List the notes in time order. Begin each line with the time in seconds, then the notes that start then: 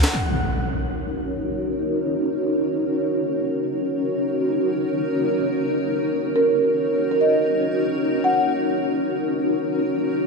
Already playing: F#5
0.03 snare, ride, tambourine
0.13 C#4 D#4 F#4 A#4 C#5, impact
3.15 C#4 D#4 F#4 A#4 C#5
6.17 C#4 D#4 F#4 A#4 C#5
6.36 A#4
7.11 A#4
7.21 D#5
7.30 D#5
8.24 F#5
8.34 F#5
9.19 C#4 D#4 F#4 A#4 C#5